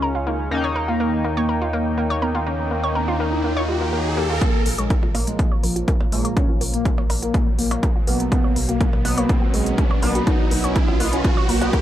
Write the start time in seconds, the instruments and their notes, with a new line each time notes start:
Already playing: detuned saw bass C#2, analog polysynth C#3 G#3 C#4, analog synth pad F4 G#4 C#5 G#5
0.02 synth arpeggio sound A#4
0.15 synth arpeggio sound F4
0.27 synth arpeggio sound A#3, analog synth lead D#4
0.51 detuned saw bass D#2, analog polysynth D#3 A#3 D#4, synth arpeggio sound A#3, analog synth lead C#4, analog synth pad D#4 A#4 C#5 G5, riser
0.64 synth arpeggio sound C#5
0.76 synth arpeggio sound A#4
0.88 analog synth lead A#3, synth arpeggio sound F4
1.00 synth arpeggio sound A#3
1.24 synth arpeggio sound A#3
1.37 analog synth lead A#3, synth arpeggio sound C#5
1.49 synth arpeggio sound A#4
1.61 synth arpeggio sound F4
1.73 synth arpeggio sound A#3, analog synth lead A#3
1.98 synth arpeggio sound A#3
2.10 synth arpeggio sound C#5
2.22 analog synth lead B3, synth arpeggio sound A#4
2.35 synth arpeggio sound F4
2.46 synth arpeggio sound A#3, analog synth lead C#4
2.71 synth arpeggio sound A#3
2.83 analog synth lead A#3, synth arpeggio sound C#5
2.95 synth arpeggio sound A#4
3.08 synth arpeggio sound F4
3.20 synth arpeggio sound A#3
3.32 analog synth lead D#4
3.44 synth arpeggio sound A#3
3.57 synth arpeggio sound C#5
3.68 synth arpeggio sound G3, analog synth lead F4
3.81 synth arpeggio sound A#3
3.93 synth arpeggio sound A#3
4.17 synth arpeggio sound A#3, analog synth lead G4
4.30 synth arpeggio sound F4
4.41 analog synth lead A#3, synth arpeggio sound A#3, analog synth pad F4 A#4 C#5 A#5, kick, closed hi-hat, mid tom, riser
4.66 detuned saw bass A#1, synth arpeggio sound A#3, open hi-hat
4.79 detuned saw bass A#1, analog synth lead G#3, synth arpeggio sound C#5, closed hi-hat
4.90 synth arpeggio sound A#4, kick, closed hi-hat, mid tom
5.03 detuned saw bass A#1, synth arpeggio sound F4, percussion blips
5.15 detuned saw bass A#1, analog polysynth A#2 F3 A#3, synth arpeggio sound A#3, open hi-hat, percussion blips
5.27 analog synth lead G#3, closed hi-hat
5.39 synth arpeggio sound A#3, kick, closed hi-hat, mid tom
5.52 synth arpeggio sound C#5
5.63 detuned saw bass A#1, analog synth lead F3, synth arpeggio sound A#4, open hi-hat
5.76 synth arpeggio sound F4, closed hi-hat
5.88 synth arpeggio sound A#3, kick, closed hi-hat, mid tom
6.01 percussion blips
6.12 detuned saw bass A#1, analog polysynth A#2 F3 A#3, analog synth lead G#3, synth arpeggio sound A#3, open hi-hat
6.25 synth arpeggio sound C#5, closed hi-hat
6.37 analog synth lead C#4, synth arpeggio sound A#4, kick, closed hi-hat, mid tom
6.49 synth arpeggio sound F4
6.61 detuned saw bass A#1, synth arpeggio sound A#3, open hi-hat
6.74 detuned saw bass A#1, analog synth lead A#3, closed hi-hat
6.85 synth arpeggio sound A#3, kick, closed hi-hat, mid tom
6.98 detuned saw bass A#1, synth arpeggio sound C#5, percussion blips
7.10 detuned saw bass A#1, analog polysynth A#2 F3 A#3, synth arpeggio sound A#4, open hi-hat, percussion blips
7.22 analog synth lead A#3, synth arpeggio sound F4, closed hi-hat
7.34 synth arpeggio sound A#3, kick, closed hi-hat, mid tom
7.59 detuned saw bass A#1, synth arpeggio sound A#3, analog synth lead A#3, open hi-hat
7.71 synth arpeggio sound C#5, closed hi-hat, percussion blips
7.83 synth arpeggio sound A#4, kick, closed hi-hat, mid tom
7.96 synth arpeggio sound F4
8.07 detuned saw bass A#1, analog polysynth B2 F#3 A#3, synth arpeggio sound A#3, analog synth lead B3, open hi-hat
8.20 closed hi-hat
8.32 synth arpeggio sound A#3, analog synth lead B3, analog synth pad F#4 A#4 D#5 A#5, kick, closed hi-hat, mid tom
8.44 synth arpeggio sound C#5
8.56 detuned saw bass B1, synth arpeggio sound A#4, open hi-hat
8.69 detuned saw bass B1, analog synth lead A#3, synth arpeggio sound F#4, closed hi-hat
8.81 synth arpeggio sound A#3, kick, closed hi-hat, mid tom
8.93 detuned saw bass B1, percussion blips
9.05 detuned saw bass B1, analog polysynth B2 F#3 B3, synth arpeggio sound A#3, open hi-hat, percussion blips
9.18 analog synth lead A#3, synth arpeggio sound C#5, closed hi-hat
9.29 synth arpeggio sound A#4, kick, closed hi-hat, mid tom
9.42 synth arpeggio sound F#4
9.54 detuned saw bass B1, analog synth lead G#3, synth arpeggio sound A#3, open hi-hat
9.66 closed hi-hat
9.78 synth arpeggio sound A#3, kick, closed hi-hat, mid tom
9.91 synth arpeggio sound C#5, percussion blips
10.03 detuned saw bass B1, analog polysynth B2 F#3 B3, analog synth lead A#3, synth arpeggio sound A#4, open hi-hat
10.15 synth arpeggio sound F#4, closed hi-hat
10.27 synth arpeggio sound A#3, analog synth lead D#4, kick, closed hi-hat, mid tom
10.51 detuned saw bass B1, synth arpeggio sound A#3, open hi-hat
10.64 detuned saw bass B1, analog synth lead C#4, synth arpeggio sound C#5, closed hi-hat
10.76 synth arpeggio sound A#4, kick, closed hi-hat, mid tom
10.88 detuned saw bass B1, synth arpeggio sound F#4, percussion blips
11.00 detuned saw bass B1, analog polysynth B2 F#3 B3, synth arpeggio sound A#3, open hi-hat, percussion blips
11.13 analog synth lead C#4, closed hi-hat
11.24 synth arpeggio sound A#3, kick, closed hi-hat, mid tom
11.37 synth arpeggio sound C#5
11.49 detuned saw bass B1, analog synth lead A#3, synth arpeggio sound A#4, open hi-hat
11.61 analog polysynth B2 F#3 B3, synth arpeggio sound F#4, closed hi-hat, percussion blips
11.73 synth arpeggio sound A#3, kick, closed hi-hat, mid tom